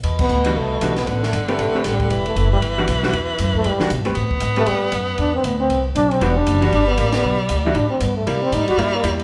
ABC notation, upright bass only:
X:1
M:4/4
L:1/8
Q:"Swing" 1/4=233
K:Em
V:1 name="Upright bass" clef=bass
E,,2 D,,2 C,,2 B,,,2 | A,,,2 G,,,2 B,,, z A,,,2 | E,,,2 F,,,2 G,,,2 B,,,2 | E,,2 F,,2 G,, z (3B,, G,, E,, |
A,,2 ^G,,2 =G,,2 F,,2 | E,,2 D,,2 C,,2 B,,,2 | E,,,2 F,,,2 G,,,2 A,,,2 | B,,,2 D,,2 A,,2 G,,2 |
C,2 (3A,, G,, E,, G,,2 E,,2 |]